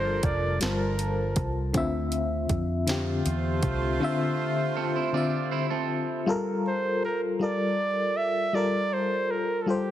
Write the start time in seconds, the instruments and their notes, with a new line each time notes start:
Already playing: fingered electric bass G1, horn section F3 D4 A#4, fm electric piano G3 F4 A4 A#4, flugelhorn C5
0.23 fingered electric bass F1, flugelhorn D5, kick, closed hi-hat
0.60 fingered electric bass G1, fm electric piano G3 F4 A5, flugelhorn A#4, snare, closed hi-hat
0.64 fm electric piano C5
0.99 closed hi-hat
1.36 fingered electric bass C2, kick, closed hi-hat
1.73 fingered electric bass D2, fm electric piano D3 C4 F4, kick, closed hi-hat
1.77 fm electric piano E5
2.12 closed hi-hat
2.49 fingered electric bass F2, kick, closed hi-hat
2.87 fm electric piano D3 C4 F4, horn section A3 F4 C5, snare, closed hi-hat
2.91 fm electric piano G4
3.26 fingered electric bass E2, closed hi-hat
3.63 fingered electric bass C2, kick, closed hi-hat
4.00 fm electric piano D3 C4 F4
4.04 fm electric piano E5
4.76 clean electric guitar C4 A4
4.96 clean electric guitar E4 C5
5.13 fm electric piano D3 C4 F4, clean electric guitar F4 D5
5.17 fm electric piano E5
5.51 clean electric guitar E4 C5
5.70 clean electric guitar C4 A4
6.26 fm electric piano G3 F4 A4
6.30 fm electric piano A#4
6.67 flugelhorn C5
7.05 flugelhorn A#4
7.39 fm electric piano G3 F4 A4, flugelhorn D5
7.44 fm electric piano A#4
8.17 flugelhorn E5
8.53 fm electric piano G3 F4 A4 A#4, flugelhorn D5
8.93 flugelhorn C5
9.30 flugelhorn A#4
9.62 flugelhorn A4
9.66 fm electric piano G3 F4 A4, flugelhorn G4
9.70 fm electric piano C5